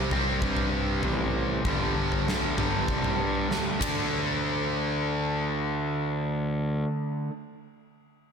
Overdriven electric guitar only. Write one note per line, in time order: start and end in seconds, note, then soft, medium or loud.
0.00 0.14 G3 medium
0.00 0.11 C4 medium
0.13 1.65 C3 medium
0.13 1.65 G3 medium
0.13 1.64 C4 medium
1.65 2.56 G2 medium
1.65 2.56 D3 medium
1.65 2.56 G3 medium
2.57 3.82 G2 medium
2.57 3.78 D3 medium
2.57 3.80 G3 medium
3.79 7.29 D3 medium
3.79 7.31 A3 medium
3.79 7.33 D4 medium